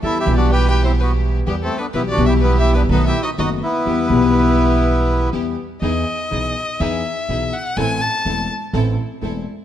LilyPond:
<<
  \new Staff \with { instrumentName = "Violin" } { \time 4/4 \key e \minor \tempo 4 = 124 \tuplet 3/2 { e''8 e''8 d''8 g''8 g''8 c''8 } b'8 r8 \tuplet 3/2 { g'8 a'8 b'8 } | \tuplet 3/2 { b'8 d''8 e''8 b'8 e''8 b'8 b'8 e''8 dis''8 } dis''8 b'8~ | b'2. r4 | \key e \major dis''2 e''4. fis''8 |
gis''8 a''4 r2 r8 | }
  \new Staff \with { instrumentName = "Bandoneon" } { \time 4/4 \key e \minor \tuplet 3/2 { <e' a'>8 <e' g'>8 <d' fis'>8 <g' b'>8 <g' b'>8 <c' e'>8 } <b fis'>8 r8 \tuplet 3/2 { <g b>8 <a c'>8 <b d'>8 } | \tuplet 3/2 { <b e'>8 <d' fis'>8 <e' g'>8 <b e'>8 <e' g'>8 <b d'>8 <b dis'>8 <e' g'>8 <dis' fis'>8 } <dis' fis'>8 <b e'>8~ | <b e'>2. r4 | \key e \major r1 |
r1 | }
  \new Staff \with { instrumentName = "String section" } { \time 4/4 \key e \minor <b e' g'>8 <b e' g'>2~ <b e' g'>8 <b e' g'>8 r8 | <b e' g'>8 <b e' g'>4. <b dis' a'>8 r8 <b dis' a'>8 r8 | <b e' g'>8 <b e' g'>2~ <b e' g'>8 <b e' g'>8 r8 | \key e \major <dis' e' gis'>8 r8 <dis' e' gis'>8 r8 <dis' e' gis'>8 r8 <dis' e' gis'>8 r8 |
<c' e' a'>8 r8 <c' e' a'>8 r8 <c' e' a'>8 r8 <c' e' a'>8 r8 | }
  \new Staff \with { instrumentName = "Grand piano" } { \clef bass \time 4/4 \key e \minor <e, e g b g'>8 <b,, b, e g b g'>2~ <b,, b, e g b g'>8 <e, e g b g'>8 r8 | <b,, b, e g b g'>8 <b,, b, e g b g'>4. <b,, b, dis a b fis'>8 r8 <fis,, fis, dis a b fis'>8 r8 | <e, e g b g'>8 <b,, b, e g b g'>2~ <b,, b, e g b g'>8 <e, e g b g'>8 r8 | \key e \major <e, e b dis' gis'>8 r8 <b,, b, e b dis' gis'>8 r8 <e, e b dis' gis'>8 r8 <b,, b, e b dis' gis'>8 r8 |
<a,, a, e a c' a'>8 r8 <e,, e, e a c' a'>8 r8 <a,, a, e a c' a'>8 r8 <e,, e, e a c' a'>8 r8 | }
  \new Staff \with { instrumentName = "Upright bass" } { \clef bass \time 4/4 \key e \minor e,8 b,,2~ b,,8 e,8 r8 | b,,8 b,,4. b,,8 r8 fis,,8 r8 | e,8 b,,2~ b,,8 e,8 r8 | \key e \major e,8 r8 b,,8 r8 e,8 r8 b,,8 r8 |
a,,8 r8 e,,8 r8 a,,8 r8 e,,8 r8 | }
>>